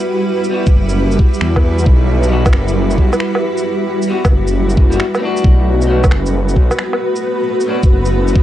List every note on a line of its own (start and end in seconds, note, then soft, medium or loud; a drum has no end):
0.00 5.40 G3 medium
0.00 5.40 E4 medium
0.00 8.43 F#4 medium
0.00 5.40 B4 loud
0.44 shaker medium
0.50 0.63 G3 medium
0.50 0.63 B3 medium
0.50 0.65 F#4 medium
0.66 kick loud
0.66 shaker soft
0.74 1.18 F#1 medium
0.89 shaker medium
1.11 shaker soft
1.19 kick loud
1.34 shaker medium
1.41 1.85 E2 loud
1.41 finger snap loud
1.56 kick medium
1.56 low woodblock medium
1.79 shaker medium
1.86 2.52 B1 loud
1.86 kick loud
2.23 shaker medium
2.29 2.42 G3 medium
2.29 2.43 B3 medium
2.33 2.44 F#4 medium
2.46 kick loud
2.46 low woodblock medium
2.46 shaker soft
2.53 2.97 F#1 medium
2.53 finger snap loud
2.68 shaker medium
2.91 shaker soft
2.98 3.12 B1 medium
2.98 kick medium
3.13 low woodblock medium
3.13 shaker medium
3.20 finger snap loud
3.35 low woodblock medium
3.57 shaker medium
4.02 shaker medium
4.08 4.21 G3 medium
4.08 4.21 B3 medium
4.08 4.23 F#4 medium
4.25 kick loud
4.25 low woodblock medium
4.25 shaker soft
4.32 4.99 F#1 medium
4.47 shaker medium
4.70 shaker soft
4.77 kick loud
4.90 5.03 G3 medium
4.90 5.03 B3 medium
4.90 5.05 F#4 medium
4.90 shaker medium
5.00 finger snap loud
5.15 5.85 A3 loud
5.15 low woodblock medium
5.15 shaker soft
5.20 5.22 C#4 medium
5.20 5.88 D4 medium
5.25 5.89 F#4 loud
5.37 shaker medium
5.44 6.10 B1 loud
5.44 8.43 A3 medium
5.44 8.43 B3 medium
5.44 8.43 B4 loud
5.44 8.43 B4 medium
5.44 kick loud
5.82 shaker medium
5.87 6.00 A3 medium
5.87 6.01 C#4 medium
5.87 6.01 D4 medium
5.91 6.02 F#4 medium
6.04 kick loud
6.04 low woodblock medium
6.04 shaker soft
6.11 6.55 F#1 medium
6.11 finger snap loud
6.26 shaker medium
6.49 shaker soft
6.56 6.70 B1 medium
6.56 kick medium
6.71 low woodblock medium
6.71 shaker medium
6.79 finger snap loud
6.93 low woodblock medium
7.16 shaker medium
7.61 shaker medium
7.66 7.79 A3 medium
7.66 7.80 C#4 medium
7.66 7.80 D4 medium
7.70 7.81 F#4 medium
7.83 kick loud
7.83 shaker soft
7.91 8.34 F#1 medium
8.05 shaker medium
8.28 shaker soft
8.36 kick loud